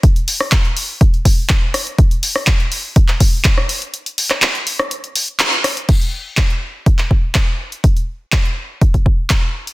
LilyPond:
\new DrumStaff \with { instrumentName = "Drums" } \drummode { \time 4/4 \tempo 4 = 123 <hh bd>16 hh16 hho16 ss16 <hc hh bd>16 hh16 hho8 <hh bd>16 hh16 <hho bd>8 <hc hh bd>8 <hho ss>16 hh16 | <hh bd>16 hh16 hho16 ss16 <hc hh bd>16 hh16 hho8 <hh bd>16 <hc hh>16 <hho bd>8 <hc hh bd>16 ss16 hho16 hh16 | hh16 hh16 hho16 <hc ss>16 <hc hh>16 hh16 hho16 ss16 hh16 hh16 hho16 hh16 <hc hh>16 hh16 <hho ss>16 hh16 | <cymc hh bd>16 hh8. <hc hh bd>16 hh8. <hh bd>16 <hc hh>16 bd8 <hc hh bd>8. hh16 |
<hh bd>16 hh8. <hc hh bd>16 hh8. <hh bd>16 <hh bd>16 bd8 <hc hh bd>8. hh16 | }